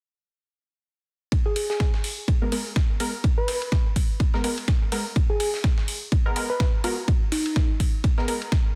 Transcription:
1.32 kick loud
1.32 ride medium
1.46 1.52 G#4 medium
1.56 1.65 G#4 medium
1.56 open hi-hat loud
1.56 ride medium
1.70 1.76 G#4 medium
1.70 snare soft
1.80 kick loud
1.80 snare loud
1.80 ride medium
1.94 snare soft
2.04 open hi-hat medium
2.28 kick loud
2.28 ride medium
2.42 2.50 G#3 medium
2.42 2.50 B3 medium
2.42 2.51 A#4 loud
2.52 2.65 G#3 medium
2.52 2.65 B3 medium
2.52 2.65 A#4 medium
2.52 open hi-hat medium
2.52 ride medium
2.76 kick loud
2.76 snare loud
2.76 ride medium
3.00 3.13 G#3 medium
3.00 3.13 B3 medium
3.00 3.13 A#4 medium
3.00 open hi-hat medium
3.00 ride medium
3.24 kick loud
3.24 ride medium
3.38 3.86 B4 medium
3.48 snare soft
3.48 open hi-hat loud
3.48 ride medium
3.62 ride soft
3.72 kick loud
3.72 snare medium
3.72 ride medium
3.96 kick medium
3.96 open hi-hat loud
3.96 ride medium
4.20 kick loud
4.20 ride medium
4.34 4.42 G#3 medium
4.34 4.42 B3 medium
4.34 4.42 A#4 medium
4.34 snare soft
4.44 4.57 G#3 medium
4.44 4.57 B3 medium
4.44 4.57 A#4 medium
4.44 open hi-hat loud
4.44 ride medium
4.58 ride soft
4.68 kick loud
4.68 snare loud
4.68 ride medium
4.92 5.05 G#3 medium
4.92 5.05 B3 medium
4.92 5.05 A#4 medium
4.92 snare soft
4.92 open hi-hat loud
4.92 ride medium
5.16 kick loud
5.16 ride medium
5.30 5.36 G#4 medium
5.40 5.49 G#4 medium
5.40 open hi-hat loud
5.40 ride medium
5.54 snare soft
5.64 kick loud
5.64 snare loud
5.64 ride medium
5.78 snare soft
5.88 open hi-hat loud
5.88 open hi-hat medium
6.12 kick loud
6.12 ride medium
6.26 6.34 G#3 medium
6.26 6.34 B3 medium
6.26 6.34 A#4 medium
6.36 6.49 G#3 medium
6.36 6.49 B3 medium
6.36 6.49 A#4 medium
6.36 open hi-hat loud
6.36 ride medium
6.50 6.66 B4 medium
6.60 kick loud
6.60 snare loud
6.60 ride medium
6.84 6.97 G#3 medium
6.84 6.97 B3 medium
6.84 7.03 F#4 medium
6.84 6.97 A#4 medium
6.84 open hi-hat loud
6.84 ride medium
7.08 kick loud
7.08 ride medium
7.32 7.70 D#4 medium
7.32 snare soft
7.32 open hi-hat loud
7.32 ride medium
7.46 ride soft
7.56 kick loud
7.56 snare loud
7.56 ride medium
7.80 kick medium
7.80 open hi-hat loud
7.80 ride medium
8.04 kick loud
8.04 ride medium
8.18 8.26 G#3 medium
8.18 8.26 B3 medium
8.18 8.26 A#4 medium
8.18 snare soft
8.28 8.41 G#3 medium
8.28 8.41 B3 medium
8.28 8.41 A#4 medium
8.28 open hi-hat loud
8.28 ride medium
8.42 ride soft
8.52 kick loud
8.52 snare loud
8.52 ride medium

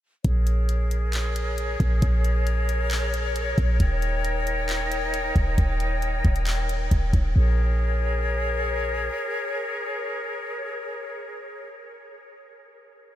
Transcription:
0.24 1.76 A#1 loud
0.24 3.77 G#4 medium
0.24 7.13 A#4 medium
0.24 7.12 C#5 medium
0.24 kick loud
0.24 closed hi-hat medium
0.47 closed hi-hat medium
0.69 closed hi-hat medium
0.91 closed hi-hat medium
1.13 clap loud
1.13 closed hi-hat medium
1.36 closed hi-hat medium
1.58 closed hi-hat medium
1.80 2.01 A#1 loud
1.80 kick medium
1.80 closed hi-hat medium
2.02 3.54 A#1 loud
2.02 kick loud
2.02 closed hi-hat medium
2.25 closed hi-hat medium
2.47 closed hi-hat medium
2.69 closed hi-hat medium
2.91 clap loud
2.91 closed hi-hat medium
3.14 closed hi-hat medium
3.36 closed hi-hat medium
3.58 3.79 A#1 loud
3.58 kick medium
3.58 closed hi-hat medium
3.80 5.32 D#1 loud
3.80 7.06 D#4 medium
3.80 7.32 G5 medium
3.80 kick loud
3.80 closed hi-hat medium
4.02 closed hi-hat medium
4.25 closed hi-hat medium
4.47 closed hi-hat medium
4.69 clap loud
4.69 closed hi-hat medium
4.92 closed hi-hat medium
5.14 closed hi-hat medium
5.36 5.57 D#1 loud
5.36 kick medium
5.36 closed hi-hat medium
5.58 6.22 D#1 loud
5.58 kick loud
5.58 closed hi-hat medium
5.80 closed hi-hat medium
6.02 closed hi-hat medium
6.25 6.89 D#1 loud
6.25 kick medium
6.25 closed hi-hat soft
6.36 closed hi-hat medium
6.47 clap loud
6.47 closed hi-hat medium
6.69 closed hi-hat medium
6.91 7.13 D#1 loud
6.91 kick medium
6.91 closed hi-hat medium
7.13 7.35 D#1 loud
7.13 kick medium
7.13 closed hi-hat medium
7.36 9.10 A#1 loud
7.36 11.67 G#4 medium
7.36 11.67 A#4 medium
7.36 11.67 C#5 medium

